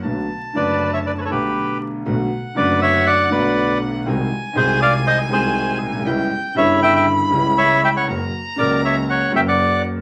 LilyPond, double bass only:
\new Staff \with { instrumentName = "Double bass" } { \clef bass \time 4/4 \key b \minor \tempo 4 = 120 b,,8 r8 fis,,4. b,,8 r4 | b,,8 r8 fis,,4. b,,4. | bis,,8 r8 bis,,4. bis,,4 b,,8 | cis,8 r8 g,,4. cis,4. |
fis,,8 r8 cis,4. fis,,4. | }